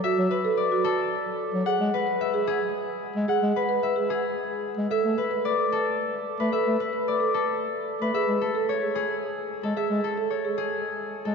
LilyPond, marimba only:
\new Staff \with { instrumentName = "Marimba" } { \time 3/4 \key e \mixolydian \tempo 4 = 111 fis'16 r8 a'16 r16 fis'16 r4. | gis'16 r8 b'16 r16 gis'16 r4. | gis'16 r8 b'16 r16 gis'16 r4. | a'16 r8 b'16 r16 a'16 r4. |
a'16 r8 b'16 r16 a'16 r4. | gis'16 r8 a'16 r16 gis'16 r4. | gis'16 r8 a'16 r16 gis'16 r4. | }